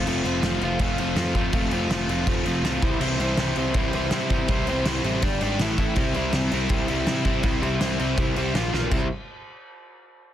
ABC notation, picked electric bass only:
X:1
M:4/4
L:1/8
Q:1/4=163
K:Cmix
V:1 name="Picked electric bass" clef=bass
F,,, F,,, F,,, F,,, F,,, F,,, F,,2 | F,,, F,,, F,,, F,,, F,,, F,,, C,, C,, | C,, C,, C,, C,, C,, C,, C,2 | C,, C,, C,, A,,, G,,, _A,,, =A,,, A,,, |
C,, C,, C,, C,, C,, C,, C,2 | C,, C,, C,, C,, C,, C,, B,,, =B,,, | C,, z6 z |]